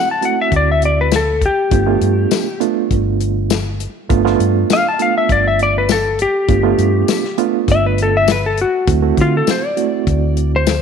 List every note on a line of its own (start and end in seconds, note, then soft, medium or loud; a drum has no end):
0.11 0.24 A5 medium
0.21 1.18 A3 medium
0.21 1.18 C4 medium
0.21 1.18 E4 medium
0.21 1.18 F#4 medium
0.21 0.39 F#5 medium
0.21 closed hi-hat medium
0.41 0.54 E5 medium
0.52 1.46 D2 loud
0.52 kick medium
0.52 closed hi-hat medium
0.56 0.69 D5 medium
0.72 0.84 E5 medium
0.82 0.99 D5 medium
0.82 closed hi-hat medium
1.01 1.13 B4 medium
1.11 snare loud
1.11 closed hi-hat medium
1.11 tambourine loud
1.16 1.43 A4 loud
1.41 kick medium
1.41 closed hi-hat medium
1.46 2.59 G4 medium
1.71 1.95 G1 medium
1.71 1.83 A3 medium
1.71 1.83 B3 medium
1.71 1.84 D4 medium
1.71 1.84 F4 medium
1.71 kick loud
1.71 closed hi-hat medium
1.86 2.46 A3 medium
1.86 2.46 B3 medium
1.86 2.46 D4 medium
1.86 2.46 F4 medium
2.01 2.25 G2 medium
2.01 closed hi-hat medium
2.31 snare loud
2.31 closed hi-hat medium
2.31 tambourine loud
2.60 3.56 A3 medium
2.60 3.56 B3 medium
2.60 3.56 D4 medium
2.60 3.56 F4 medium
2.60 closed hi-hat medium
2.91 3.85 G1 loud
2.91 kick medium
2.91 closed hi-hat medium
3.20 closed hi-hat medium
3.50 snare loud
3.50 closed hi-hat medium
3.50 tambourine loud
3.80 closed hi-hat medium
4.10 4.34 G1 medium
4.10 4.22 A3 medium
4.10 4.22 B3 medium
4.10 4.22 D4 medium
4.10 4.22 F4 loud
4.10 kick loud
4.10 closed hi-hat medium
4.25 4.85 A3 medium
4.25 4.85 B3 medium
4.25 4.85 D4 medium
4.25 4.85 F4 loud
4.25 snare soft
4.39 4.63 G2 medium
4.39 closed hi-hat medium
4.70 4.86 F5 loud
4.70 snare loud
4.70 closed hi-hat medium
4.70 tambourine loud
4.88 5.01 A5 medium
4.99 5.95 A3 medium
4.99 5.95 B3 medium
4.99 5.95 D4 medium
4.99 5.95 F4 medium
4.99 5.16 F5 medium
4.99 closed hi-hat medium
5.18 5.30 E5 medium
5.29 6.24 G1 medium
5.29 5.46 D5 medium
5.29 kick medium
5.29 closed hi-hat medium
5.48 5.60 E5 medium
5.59 5.76 D5 loud
5.59 closed hi-hat medium
5.78 5.90 B4 medium
5.89 6.19 A4 medium
5.89 snare loud
5.89 closed hi-hat medium
5.89 tambourine loud
6.19 7.36 G4 loud
6.19 closed hi-hat medium
6.48 6.72 G1 medium
6.48 6.61 A3 medium
6.48 6.61 B3 medium
6.48 6.61 D4 medium
6.48 6.61 F4 medium
6.48 kick loud
6.48 closed hi-hat medium
6.63 7.23 A3 medium
6.63 7.23 B3 medium
6.63 7.23 D4 medium
6.63 7.23 F4 medium
6.78 7.02 G2 medium
6.78 closed hi-hat medium
7.08 snare medium
7.08 closed hi-hat medium
7.08 tambourine loud
7.24 snare soft
7.38 8.34 A3 medium
7.38 8.34 B3 medium
7.38 8.34 D4 medium
7.38 8.34 F4 medium
7.38 closed hi-hat medium
7.68 8.63 G1 medium
7.68 7.85 E5 loud
7.68 kick medium
7.68 closed hi-hat medium
7.86 7.99 B4 medium
7.98 closed hi-hat medium
8.02 8.15 A4 medium
8.17 8.29 E5 medium
8.28 8.45 B4 medium
8.28 snare loud
8.28 closed hi-hat medium
8.28 tambourine loud
8.46 8.59 A4 medium
8.57 closed hi-hat medium
8.61 8.89 F#4 medium
8.87 9.11 D2 medium
8.87 9.00 A3 medium
8.87 9.00 C4 medium
8.87 9.00 E4 medium
8.87 9.00 F#4 medium
8.87 kick loud
8.87 closed hi-hat medium
9.02 9.62 A3 medium
9.02 9.62 C4 medium
9.02 9.62 E4 medium
9.02 9.62 F#4 medium
9.17 9.41 D3 medium
9.17 kick medium
9.17 closed hi-hat medium
9.21 9.34 F4 loud
9.37 9.49 A4 loud
9.47 9.66 C5 medium
9.47 snare loud
9.47 closed hi-hat medium
9.47 tambourine loud
9.66 10.51 D5 loud
9.77 10.73 A3 medium
9.77 10.73 C4 medium
9.77 10.73 E4 medium
9.77 10.73 F#4 medium
9.77 closed hi-hat medium
10.07 10.82 D2 medium
10.07 kick medium
10.07 closed hi-hat medium
10.37 closed hi-hat medium
10.56 10.82 C5 loud
10.67 snare loud
10.67 closed hi-hat medium
10.67 tambourine loud